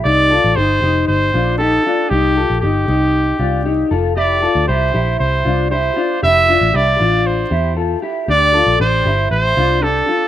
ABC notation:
X:1
M:4/4
L:1/16
Q:1/4=117
K:Cmix
V:1 name="Trumpet"
d4 c4 c4 A4 | G4 G8- G2 z2 | d4 c4 c4 c4 | e4 d4 c4 z4 |
d4 c4 c4 A4 |]
V:2 name="Clean electric guitar"
[_EG]2 [FA]2 [EG]2 [EG]4 [DF]2 [EG]2 [DF]2 | [_EG]2 [FA]2 [EG]2 [EG]4 [DF]2 [EG]2 [FA]2 | [EG]2 [FA]2 [EG]2 [EG]4 [DF]2 [EG]2 [DF]2 | [EG]2 [DF]2 [EG]2 [DF]4 [EG]2 [FA]2 [EG]2 |
[DG]2 [FA]2 [DG]2 [EG]4 [DF]2 [DG]2 [DF]2 |]
V:3 name="Picked electric bass" clef=bass
C,,3 A,,, G,,,2 F,,,2 G,,,2 B,,,4 z2 | C,,3 B,,, G,,,2 C,,4 C,,4 F,,,2- | F,,,3 D,, C,,2 B,,,2 C,,2 C,,4 z2 | F,,,3 A,,, C,,2 A,,,4 E,,4 z2 |
D,,3 B,,, A,,,2 G,,,2 A,,,2 C,,4 z2 |]